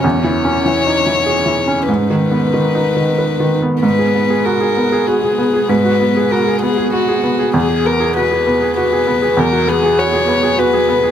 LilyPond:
<<
  \new Staff \with { instrumentName = "Violin" } { \time 3/4 \key gis \minor \tempo 4 = 98 cis''2. | b'2~ b'8 r8 | b'4 ais'4 gis'4 | b'4 ais'8 gis'8 fis'4 |
gis'8 ais'8 b'4 b'4 | ais'8 gis'8 cis''4 b'4 | }
  \new Staff \with { instrumentName = "Ambient pad" } { \time 3/4 \key gis \minor << { <cis' gis'>2. | <b ais''>2. | <b gis'>2.~ | <b gis'>2. |
<b gis'>2.~ | <b gis'>2. | } \\ { dis'2.~ | dis'2. | fis'2.~ | fis'2. |
fis'2.~ | fis'2. | } >> }
  \new Staff \with { instrumentName = "Felt piano" } { \time 3/4 \key gis \minor \tuplet 3/2 { e,8 e8 cis'8 e8 dis'8 e8 gis'8 e8 cis'8 } | \tuplet 3/2 { gis,8 dis8 b8 dis8 dis'8 dis8 b'8 dis8 b8 } | gis,16 gis'16 b16 gis'16 fis'16 gis'16 b16 gis'16 fis'16 gis'16 b16 gis'16 | gis,16 fis'16 b16 gis'16 fis'16 gis'16 b16 gis'16 fis'16 gis'16 b16 gis'16 |
e,16 gis'16 b16 gis'16 fis'16 gis'16 b16 gis'16 fis'16 gis'16 b16 gis'16 | e,16 fis'16 b16 gis'16 fis'16 gis'16 b16 gis'16 fis'16 gis'16 b16 gis'16 | }
>>